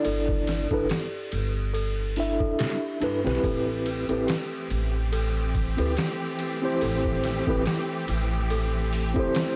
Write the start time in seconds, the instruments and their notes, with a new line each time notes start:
Already playing: tine electric piano D4 E4 A4 D5
0.05 upright bass G1, celesta A4, ride
0.29 kick
0.47 snare, ride
0.71 upright bass G1, tine electric piano D4 E4 A4 B4, celesta A4, kick
0.89 celesta G4, snare, ride
1.32 upright bass G1, ride
1.74 celesta A4, ride
2.16 tine electric piano D4 E4 A4 E5, open hi-hat
2.40 celesta A4, kick
2.59 celesta G4, snare, ride
3.01 upright bass G2, tine electric piano D4 E4 A4 B4, ride
3.24 upright bass B1, tine electric piano C4 E4 G4 B4, snare
3.43 upright bass A1, string section E3 A3 C4 G4, celesta A4, kick, ride
3.86 ride
4.09 upright bass A1, tine electric piano C4 E4 G4 B4, celesta A4, ride
4.27 celesta G4, snare, ride
4.70 upright bass A1, ride
5.12 celesta A4, ride
5.55 kick, ride
5.77 upright bass D2, tine electric piano C4 E4 G4 B4, celesta A4, ride
5.97 celesta G4, snare, ride
6.39 ride
6.62 tine electric piano C4 E4 G4 C5
6.81 upright bass A1, celesta A4, ride
7.05 kick
7.23 snare, ride
7.47 upright bass A1, tine electric piano C4 E4 G4 B4, celesta A4, kick
7.66 celesta G4, snare, ride
8.08 upright bass A1, ride
8.50 celesta A4, ride
8.93 open hi-hat
9.14 tine electric piano C4 E4 G4, celesta A4, kick
9.19 tine electric piano C5
9.35 celesta G4, snare, ride